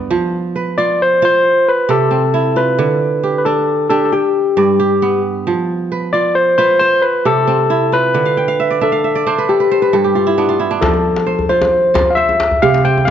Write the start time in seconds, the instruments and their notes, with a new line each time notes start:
Already playing: kora G2 B3 D5 E5
0.11 kora F3
0.56 kora B4
0.78 kora F4, tine electric piano D5
1.02 tine electric piano C5
1.22 kora F4 C5, tine electric piano C5
1.69 tine electric piano B4
1.89 kora C3 G4, tine electric piano A4
2.11 kora C4
2.34 kora E4
2.56 kora F4, tine electric piano B4
2.79 kora D3
3.23 kora G4
3.38 tine electric piano B4
3.45 kora D4, tine electric piano A4
3.89 kora D4 G4, tine electric piano A4
4.05 tine electric piano A4
4.12 tine electric piano G4, kora G5
4.57 kora G2 D5
4.80 kora G4
5.02 kora B3
5.47 kora F3
5.92 kora B4
6.13 kora F4, tine electric piano D5
6.35 tine electric piano C5
6.58 kora F4 B4, tine electric piano C5
6.79 tine electric piano C5, kora C5
7.02 tine electric piano B4
7.25 kora C3 G4, tine electric piano A4
7.47 kora C4
7.70 kora E4
7.92 kora F4, tine electric piano B4
8.14 kora D3
8.25 kora F5
8.37 kora G5
8.48 kora F5
8.60 kora E5
8.70 kora D5
8.81 kora D4 E5, tine electric piano A4
8.92 kora F5
9.04 kora E5
9.15 kora D5
9.27 kora D4 C5
9.38 kora B4
9.49 tine electric piano G4, kora A4
9.60 kora B4
9.71 kora C5
9.82 kora B4
9.93 kora G2 A4
10.04 kora G4
10.15 kora F4
10.27 kora E4
10.38 kora B3 D4
10.49 kora F4
10.60 kora E4
10.71 kora D4
10.81 kora F3, tine electric piano A4, djembe slap, djembe bass
10.94 djembe slap, djembe tone
11.16 djembe slap
11.27 kora C5, djembe slap
11.39 djembe bass
11.49 kora F4, tine electric piano C5
11.62 djembe slap, djembe tone
11.94 kora F4, djembe slap, djembe tone, djembe bass
12.11 tine electric piano F5
12.15 kora C5, tine electric piano E5
12.29 djembe tone
12.40 djembe slap
12.51 djembe bass
12.62 kora C3 G4, tine electric piano F5, djembe tone
12.74 djembe slap
12.85 kora C4, tine electric piano G5, djembe slap
12.97 djembe tone
13.05 kora E4, tine electric piano F5